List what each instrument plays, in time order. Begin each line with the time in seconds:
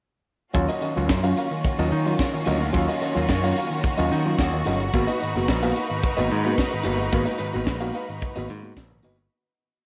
0.53 picked electric bass D#2, string section D#3 A#3 C#4 F4 F#4, tine electric piano F#3 C#4 F4, muted clean electric guitar stroke, kick, closed hi-hat, shaker
0.69 clean electric guitar C#4 F#4 A#4 D#5, closed hi-hat, shaker
0.81 tine electric piano D#3, clean electric guitar C#4 F#4 A#4 D#5, closed hi-hat
0.96 picked electric bass C#2, tine electric piano F#3 C#4 F4, muted clean electric guitar stroke, closed hi-hat, shaker
1.09 picked electric bass F#2, muted clean electric guitar stroke, kick, snare, shaker
1.24 tine electric piano F#3 C#4 F4, clean electric guitar C#4 F#4 A#4 F5, closed hi-hat, shaker
1.36 clean electric guitar C#4 F#4 A#4 F5, closed hi-hat, shaker
1.51 tine electric piano D#3, muted clean electric guitar stroke, closed hi-hat, shaker
1.64 muted clean electric guitar stroke, kick, closed hi-hat, shaker
1.78 picked electric bass D#2, tine electric piano F#3 C#4 F4, clean electric guitar C#4 F#4 A#4 D#5, closed hi-hat, shaker
1.91 tine electric piano D#3, picked electric bass D#3, muted clean electric guitar stroke, closed hi-hat
2.06 tine electric piano F#3 C#4 F4, muted clean electric guitar stroke, closed hi-hat, shaker
2.19 tine electric piano C#4 F4, kick, snare, shaker
2.32 tine electric piano D#3, muted clean electric guitar stroke, closed hi-hat, shaker
2.46 picked electric bass D2, tine electric piano F#3 C#4 F4, clean electric guitar C#4 F#4 A#4 D#5, open hi-hat, shaker
2.61 muted clean electric guitar stroke, closed hi-hat, shaker
2.73 picked electric bass D#2, tine electric piano F#3 C#4 F4, muted clean electric guitar stroke, kick, closed hi-hat, shaker
2.88 clean electric guitar C#4 F#4 A#4 D#5, closed hi-hat, shaker
3.01 tine electric piano D#3, clean electric guitar C#4 F#4 A#4 D#5, closed hi-hat
3.15 picked electric bass D#2, tine electric piano F#3 C#4 F4, muted clean electric guitar stroke, snare, closed hi-hat, shaker
3.29 picked electric bass F#2, muted clean electric guitar stroke, kick, snare, shaker
3.43 tine electric piano F#3 C#4 F4, clean electric guitar C#4 F#4 A#4 F5, closed hi-hat, shaker
3.56 clean electric guitar C#4 F#4 A#4 F5, closed hi-hat, shaker
3.70 tine electric piano D#3, muted clean electric guitar stroke, closed hi-hat, shaker
3.83 muted clean electric guitar stroke, kick, closed hi-hat, shaker
3.98 picked electric bass D#2, tine electric piano F#3 C#4 F4, clean electric guitar C#4 F#4 A#4 D#5, closed hi-hat, shaker
4.11 tine electric piano D#3, picked electric bass D#3, clean electric guitar C#4 F#4 A#4 D#5, closed hi-hat
4.25 tine electric piano F#3 C#4 F4, muted clean electric guitar stroke, closed hi-hat, shaker
4.39 picked electric bass D#2, tine electric piano C#4 F4, kick, snare, shaker
4.52 tine electric piano D#3, muted clean electric guitar stroke, closed hi-hat, shaker
4.65 picked electric bass G1, tine electric piano F#3 C#4 F4, clean electric guitar C#4 F#4 A#4 D#5, open hi-hat, shaker
4.80 muted clean electric guitar stroke, closed hi-hat, shaker
4.93 picked electric bass G#1, string section G#3 D#4 A#4 B4, tine electric piano A#3 B3 F#4, muted clean electric guitar stroke, kick, closed hi-hat, shaker
5.07 clean electric guitar D#4 F#4 B4 D#5, closed hi-hat, shaker
5.20 tine electric piano G#2 D#3, clean electric guitar D#4 F#4 B4 D#5, closed hi-hat
5.34 picked electric bass F#1, tine electric piano A#3 B3 F#4, muted clean electric guitar stroke, snare, closed hi-hat, shaker
5.48 picked electric bass A#1, muted clean electric guitar stroke, kick, snare, shaker
5.63 tine electric piano A#3 B3 F#4, clean electric guitar D#4 F#4 B4 F5, closed hi-hat, shaker
5.75 clean electric guitar D#4 F#4 B4 F5, closed hi-hat, shaker
5.90 tine electric piano G#2 D#3, muted clean electric guitar stroke, closed hi-hat, shaker
6.03 muted clean electric guitar stroke, kick, closed hi-hat, shaker
6.17 picked electric bass G#1, tine electric piano A#3 B3 F#4, clean electric guitar D#4 F#4 B4 D#5, closed hi-hat, shaker
6.29 tine electric piano G#2 D#3, picked electric bass G#2, muted clean electric guitar stroke, closed hi-hat
6.45 tine electric piano A#3 B3 F#4, muted clean electric guitar stroke, closed hi-hat, shaker
6.58 tine electric piano B3, kick, snare, shaker
6.71 tine electric piano G#2 D#3, muted clean electric guitar stroke, closed hi-hat, shaker
6.83 picked electric bass G1, tine electric piano A#3 B3 F#4, clean electric guitar D#4 F#4 B4 D#5, open hi-hat, shaker
6.99 muted clean electric guitar stroke, closed hi-hat, shaker
7.12 picked electric bass G#1, tine electric piano A#3 B3 F#4, muted clean electric guitar stroke, kick, closed hi-hat, shaker
7.25 clean electric guitar D#4 F#4 B4 D#5, closed hi-hat, shaker
7.38 tine electric piano G#2 D#3, clean electric guitar D#4 F#4 B4 D#5, closed hi-hat, shaker
7.54 picked electric bass G#1, tine electric piano A#3 B3 F#4, muted clean electric guitar stroke, closed hi-hat, shaker
7.66 picked electric bass A#1, muted clean electric guitar stroke, kick, snare, shaker
7.80 tine electric piano A#3 B3 F#4, clean electric guitar D#4 F#4 B4 F5, closed hi-hat, shaker
7.93 clean electric guitar D#4 F#4 B4 F5, closed hi-hat, shaker
8.08 tine electric piano G#2 D#3, muted clean electric guitar stroke, closed hi-hat, shaker
8.21 muted clean electric guitar stroke, kick, closed hi-hat, shaker
8.36 picked electric bass G#1, tine electric piano A#3 B3 F#4, clean electric guitar D#4 F#4 B4 D#5, closed hi-hat, shaker
8.49 tine electric piano G#2 D#3, picked electric bass G#2, muted clean electric guitar stroke, closed hi-hat
8.62 tine electric piano A#3 B3 F#4, muted clean electric guitar stroke, closed hi-hat, shaker
8.76 picked electric bass A#1, tine electric piano B3 F#4, kick, snare, shaker
8.90 tine electric piano G#2 D#3, muted clean electric guitar stroke, closed hi-hat, shaker
9.03 picked electric bass G1, tine electric piano A#3 B3 F#4, clean electric guitar D#4 F#4 B4 D#5, open hi-hat, shaker
9.17 muted clean electric guitar stroke, closed hi-hat, shaker